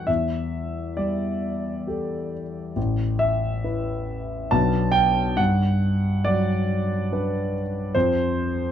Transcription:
0.00 0.11 G3 soft
0.00 0.10 F#4 soft
0.00 0.10 A4 soft
0.00 0.10 G5 medium
0.07 2.72 E2 soft
0.07 0.97 E5 medium
0.97 2.41 G3 soft
0.97 2.31 D5 medium
1.87 2.72 G4 soft
1.87 2.72 A4 soft
2.76 4.47 A1 soft
3.19 4.50 E5 medium
3.64 4.47 E4 soft
3.64 4.47 B4 soft
4.51 5.36 B1 soft
4.51 5.34 F#3 soft
4.51 5.35 B3 soft
4.51 5.35 D4 soft
4.51 5.35 B4 soft
4.51 4.94 A5 medium
4.92 5.37 G5 medium
5.37 7.90 G2 soft
5.37 6.24 F#5 medium
6.25 7.62 F#3 soft
6.25 7.53 D5 medium
7.12 7.91 D4 soft
7.12 7.92 B4 soft
7.95 8.72 F2 soft
7.95 8.72 C5 medium

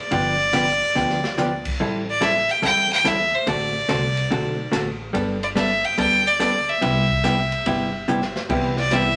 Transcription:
0.00 1.66 D5 loud
0.11 0.79 G1 loud
0.11 0.34 D3 medium
0.11 0.34 F3 medium
0.11 0.34 B3 medium
0.11 0.34 D4 medium
0.11 0.35 G4 medium
0.11 kick soft
0.11 ride medium
0.53 0.65 D3 medium
0.53 0.65 F3 medium
0.53 0.66 B3 medium
0.53 0.66 D4 medium
0.53 0.66 G4 medium
0.53 kick soft
0.53 snare medium
0.53 hi-hat pedal medium
0.53 ride medium
0.95 1.63 D2 medium
0.95 1.18 D3 medium
0.95 1.18 F3 medium
0.95 1.18 B3 medium
0.95 1.18 D4 medium
0.95 1.19 G4 medium
0.95 snare soft
1.10 snare medium
1.24 snare medium
1.38 1.50 D3 medium
1.38 1.50 F3 medium
1.38 1.50 B3 medium
1.38 1.50 D4 medium
1.38 1.50 G4 medium
1.38 snare medium
1.38 hi-hat pedal medium
1.65 kick medium
1.65 crash medium
1.80 2.47 A1 medium
1.80 2.02 E3 medium
1.80 2.02 G3 medium
1.80 2.02 C4 medium
1.80 2.03 E4 medium
1.80 2.03 A4 medium
2.10 2.25 D5 medium
2.21 2.33 E3 medium
2.21 2.33 G3 medium
2.21 2.33 C4 medium
2.21 2.33 E4 medium
2.21 2.34 A4 medium
2.21 2.52 E5 loud
2.21 kick soft
2.21 snare medium
2.21 hi-hat pedal soft
2.21 ride medium
2.49 2.63 G5 loud
2.49 ride medium
2.62 3.31 E2 medium
2.62 2.85 E3 medium
2.62 2.85 G3 medium
2.62 2.86 C4 medium
2.62 2.86 E4 medium
2.62 2.86 A4 medium
2.62 2.90 G5 loud
2.62 kick soft
2.62 ride medium
2.93 3.09 G5 loud
3.04 3.17 E3 medium
3.04 3.17 G3 medium
3.04 3.17 C4 medium
3.04 3.17 E4 medium
3.04 3.17 A4 medium
3.04 3.36 E5 loud
3.04 kick soft
3.04 snare medium
3.04 hi-hat pedal medium
3.04 ride medium
3.35 3.50 C5 medium
3.47 3.81 A1 medium
3.47 3.69 D3 medium
3.47 3.70 A3 medium
3.47 3.70 C4 medium
3.47 3.70 F#4 medium
3.47 3.70 A4 medium
3.47 4.73 D5 medium
3.47 kick soft
3.47 ride medium
3.89 4.25 C2 medium
3.89 4.01 D3 medium
3.89 4.01 A3 medium
3.89 4.01 C4 medium
3.89 4.01 F#4 medium
3.89 4.01 A4 medium
3.89 kick soft
3.89 snare medium
3.89 hi-hat pedal medium
3.89 ride medium
4.17 ride medium
4.31 4.67 B1 medium
4.31 4.53 D3 medium
4.31 4.54 A3 medium
4.31 4.54 C4 medium
4.31 4.54 F#4 medium
4.31 4.54 A4 medium
4.31 kick soft
4.31 ride medium
4.71 5.09 A1 medium
4.71 4.84 D3 medium
4.71 4.84 A3 medium
4.71 4.84 C4 medium
4.71 4.85 F#4 medium
4.71 4.85 A4 medium
4.71 kick soft
4.71 snare medium
4.71 hi-hat pedal medium
4.71 ride medium
5.13 5.82 G1 medium
5.13 5.36 G3 medium
5.13 5.37 B3 medium
5.13 5.37 D4 medium
5.13 5.37 A4 medium
5.13 kick soft
5.13 ride medium
5.43 5.49 D5 medium
5.43 ride soft
5.55 5.68 G3 medium
5.55 5.68 B3 medium
5.55 5.68 D4 medium
5.55 5.68 A4 medium
5.55 5.86 E5 medium
5.55 kick soft
5.55 snare medium
5.55 hi-hat pedal medium
5.55 ride medium
5.84 5.98 G5 loud
5.84 ride soft
5.98 6.65 D2 medium
5.98 6.21 G3 medium
5.98 6.21 B3 medium
5.98 6.21 D4 medium
5.98 6.21 A4 medium
5.98 6.29 G5 loud
5.98 kick soft
5.98 ride medium
6.27 6.71 D5 loud
6.40 6.52 G3 medium
6.40 6.52 B3 medium
6.40 6.52 D4 medium
6.40 6.52 A4 medium
6.40 kick soft
6.40 snare medium
6.40 hi-hat pedal medium
6.40 ride medium
6.69 8.36 E5 loud
6.81 7.49 C2 medium
6.81 7.04 C3 medium
6.81 7.05 G3 medium
6.81 7.05 B3 medium
6.81 7.05 E4 medium
6.81 7.05 G4 medium
6.81 kick soft
6.81 ride medium
7.10 kick medium
7.24 7.36 C3 medium
7.24 7.36 G3 medium
7.24 7.36 B3 medium
7.24 7.36 E4 medium
7.24 7.36 G4 medium
7.24 snare medium
7.24 hi-hat pedal medium
7.24 ride medium
7.52 ride soft
7.66 8.33 G1 medium
7.66 7.89 C3 medium
7.66 7.89 G3 medium
7.66 7.89 B3 medium
7.66 7.89 E4 medium
7.66 7.89 G4 medium
7.66 kick soft
7.66 ride medium
8.08 8.20 C3 medium
8.08 8.20 G3 medium
8.08 8.20 B3 medium
8.08 8.20 E4 medium
8.08 8.20 G4 medium
8.08 hi-hat pedal medium
8.22 snare medium
8.36 snare medium
8.49 9.16 C2 medium
8.49 8.72 C3 medium
8.49 8.74 E3 medium
8.49 8.75 G3 medium
8.49 8.72 G3 medium
8.49 8.75 B3 medium
8.49 8.73 B3 medium
8.49 8.75 C4 medium
8.49 8.75 E4 medium
8.49 8.73 E4 medium
8.49 8.73 G4 medium
8.49 kick medium
8.49 crash medium
8.77 8.95 D5 medium
8.77 snare medium
8.91 9.04 C3 medium
8.91 9.16 E3 medium
8.91 9.16 G3 medium
8.91 9.04 G3 medium
8.91 9.16 B3 medium
8.91 9.04 B3 medium
8.91 9.16 C4 medium
8.91 9.16 E4 medium
8.91 9.04 E4 medium
8.91 9.05 G4 medium
8.91 9.16 E5 loud
8.91 kick soft
8.91 snare medium
8.91 hi-hat pedal medium
8.91 ride medium

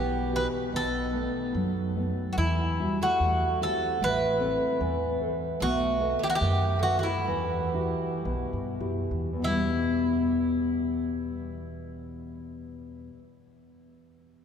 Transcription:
0.00 0.45 B1 medium
0.00 0.71 B2 medium
0.00 0.29 B3 medium
0.00 0.16 E4 soft
0.00 0.17 G4 medium
0.00 0.35 G4 medium
0.00 0.16 F#5 soft
0.33 0.65 E3 soft
0.33 0.47 D#4 medium
0.33 0.65 F#4 soft
0.33 0.65 G4 soft
0.33 0.46 B4 medium
0.73 1.26 B1 medium
0.73 1.52 B2 medium
0.73 1.94 A4 loud
0.77 1.94 D#4 medium
1.13 1.79 A3 soft
1.13 1.80 B3 soft
1.13 1.80 D#4 soft
1.54 2.09 F#2 medium
1.54 2.36 F#3 medium
1.96 2.29 A3 soft
1.96 2.30 B3 soft
1.96 2.30 D#4 soft
2.33 2.39 A3 soft
2.33 2.37 F#4 medium
2.37 2.91 E2 medium
2.37 3.18 E3 medium
2.37 2.97 G3 medium
2.37 2.96 E4 medium
2.80 3.45 G3 soft
2.80 3.45 E4 soft
2.80 3.45 F#4 soft
3.02 3.58 A3 medium
3.02 3.58 F#4 medium
3.20 3.72 E2 medium
3.62 3.99 C4 medium
3.62 3.93 E4 soft
3.62 3.94 F#4 soft
3.62 3.94 G4 medium
3.62 4.03 A4 medium
4.01 4.53 A1 medium
4.01 4.79 A3 medium
4.01 5.18 E4 medium
4.01 5.19 B4 loud
4.39 5.05 C4 medium
4.39 5.05 A4 soft
4.39 5.04 B4 soft
4.80 5.33 E2 medium
4.80 5.58 E3 medium
5.21 5.53 A4 soft
5.21 5.54 B4 soft
5.21 5.54 C5 medium
5.60 6.14 B1 loud
5.60 6.17 A3 medium
5.60 6.01 B3 medium
5.60 6.23 F#4 loud
6.01 6.67 A4 soft
6.01 6.67 B4 soft
6.01 6.67 D#5 medium
6.19 6.27 B3 medium
6.23 6.34 A3 medium
6.23 6.29 G4 medium
6.30 6.35 F#4 loud
6.34 6.80 B3 medium
6.34 6.82 G4 loud
6.41 6.98 F#2 loud
6.41 7.25 D#3 medium
6.79 6.95 A3 medium
6.79 6.98 F#4 medium
6.83 7.19 A4 medium
6.83 7.19 B4 soft
6.83 7.19 D#5 medium
6.97 8.76 G3 medium
6.97 7.00 A3 soft
6.97 7.06 F#4 medium
7.03 8.77 E4 medium
7.27 7.92 E2 medium
7.27 8.23 E3 medium
7.74 8.60 E4 soft
7.74 8.60 F#4 soft
7.74 8.61 G4 medium
8.24 8.43 B1 medium
8.24 9.33 B2 medium
8.53 8.79 G2 medium
8.80 9.08 F#2 medium
8.80 9.30 E4 soft
8.80 9.30 F#4 soft
8.80 9.30 G4 medium
9.11 9.40 E2 medium
9.33 13.07 E2 medium
9.39 13.16 E2 medium
9.39 13.13 B2 soft
9.44 13.18 G3 medium
9.44 13.19 G3 soft
9.44 13.18 E4 medium
9.52 13.26 B3 medium

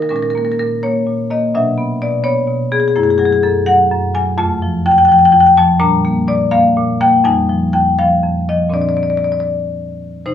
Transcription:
0.00 0.11 D#4 medium
0.00 0.09 A#4 medium
0.09 0.58 A#2 medium
0.09 1.50 G#3 soft
0.09 1.50 C#4 medium
0.09 0.16 A#4 medium
0.16 0.22 A#4 medium
0.22 0.30 A#4 medium
0.30 0.38 A#4 medium
0.35 0.82 A#3 medium
0.35 0.45 A#4 medium
0.45 0.52 A#4 medium
0.52 0.56 A#4 medium
0.59 1.06 A#2 medium
0.59 0.82 A#4 medium
0.83 1.29 A#3 medium
0.83 1.29 C#5 loud
1.07 1.53 A#2 medium
1.31 1.53 A#3 medium
1.31 1.53 D#5 loud
1.55 2.00 B2 medium
1.55 2.93 F#3 medium
1.55 2.93 D4 medium
1.55 2.00 E5 loud
1.78 2.23 B3 medium
2.02 2.46 B2 medium
2.02 2.24 D5 loud
2.24 2.71 B3 medium
2.24 2.70 C#5 loud
2.47 2.94 B2 medium
2.72 2.95 B3 medium
2.72 2.80 G#4 loud
2.80 2.88 G#4 medium
2.88 2.96 G#4 medium
2.95 3.42 F#2 medium
2.95 4.33 A3 medium
2.95 4.34 E4 medium
2.95 3.03 G#4 medium
3.03 3.10 G#4 medium
3.10 3.18 G#4 medium
3.18 3.65 F#3 medium
3.18 3.25 G#4 medium
3.25 3.33 G#4 medium
3.33 3.40 G#4 medium
3.43 3.90 F#2 medium
3.43 3.66 A4 medium
3.66 4.13 F#3 medium
3.66 4.12 F#5 loud
3.91 4.37 F#2 medium
4.15 4.37 F#3 medium
4.15 4.37 G#5 loud
4.38 4.85 F2 medium
4.38 5.77 A3 medium
4.38 5.77 F4 medium
4.38 4.84 A5 loud
4.62 5.07 F3 medium
4.86 5.32 F2 medium
4.86 4.91 G5 loud
4.91 4.98 G5 loud
4.98 5.05 G5 loud
5.05 5.56 F3 medium
5.05 5.12 G5 loud
5.12 5.19 G5 loud
5.19 5.25 G5 medium
5.25 5.32 G5 loud
5.32 5.79 F2 medium
5.32 5.40 G5 loud
5.40 5.47 G5 loud
5.47 5.54 G5 loud
5.57 5.80 F3 medium
5.57 5.80 A5 loud
5.79 6.27 A#2 medium
5.79 7.20 G3 medium
5.79 7.20 D4 medium
5.79 6.26 A#5 loud
6.05 6.50 A#3 medium
6.28 6.76 A#2 medium
6.28 6.51 D5 loud
6.51 7.00 A#3 medium
6.51 6.98 F5 loud
6.77 7.23 A#2 medium
7.01 7.24 A#3 medium
7.01 7.24 G5 loud
7.25 7.72 F2 medium
7.25 8.70 G3 medium
7.25 8.70 D#4 medium
7.25 7.72 G#5 loud
7.49 7.97 F3 medium
7.73 8.22 F2 medium
7.73 7.97 G5 loud
7.99 8.48 F3 medium
7.99 8.46 F5 loud
8.24 8.72 F2 medium
8.49 8.73 F3 medium
8.49 8.73 D#5 loud
8.69 10.19 A#2 medium
8.69 10.20 C4 medium
8.69 10.20 D4 medium
8.74 8.81 D5 medium
8.81 8.89 D5 medium
8.89 8.97 D5 medium
8.97 9.03 D5 medium
9.03 9.10 D5 medium
9.10 9.17 D5 medium
9.17 9.24 D5 medium
9.24 9.32 D5 medium
9.32 9.40 D5 medium
9.40 9.47 D5 medium
10.26 10.34 C3 medium
10.26 10.34 D#4 medium
10.26 10.34 C5 medium

